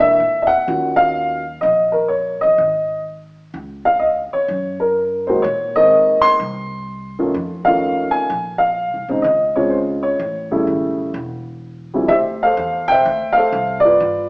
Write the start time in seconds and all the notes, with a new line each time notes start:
Already playing: E1 D3 G#3 A#3 E4
0.00 E5
0.20 A#2
0.42 E5
0.47 F#5
0.67 D#2 D#3 F#3 C#4 F4
0.96 F5
1.61 A#1 D#5
1.92 A#4
2.08 C#5
2.41 A#1 D#5
2.58 G#1
3.54 C#2
3.85 F5
3.99 D#5
4.33 C#5, muted upright bass stroke
4.48 F#2
4.80 A#4
5.27 D#3 G#3 A#3 F#4 C5
5.42 A#2 C#5
5.76 D#3 G#3 A#3 C4 D#5
6.21 C6
6.39 C2
7.19 D#3 A3 C#4 F4
7.34 F2
7.65 D#3 A3 C#4 F4 F5
8.11 G#5, muted upright bass stroke
8.30 A#1
8.58 F5
8.94 C2
9.08 A1 C#3 G#3 C4 D#4
9.22 C#2 D#5
9.56 C#3 G#3 C4 F4 C#5
9.70 C5
10.03 C#5
10.19 A1
10.51 C#3 G3 A3 E4
10.67 G#1
11.14 E1
11.94 D2 C3 F3 G3 E4
12.08 D2 G4 C5 E5
12.43 A4 C5 F5
12.57 E2
12.88 E5 G5
12.92 C5
13.05 D2
13.33 F5
13.37 A4 C5
13.52 C2
13.80 D5
13.85 F4 B4
14.00 G1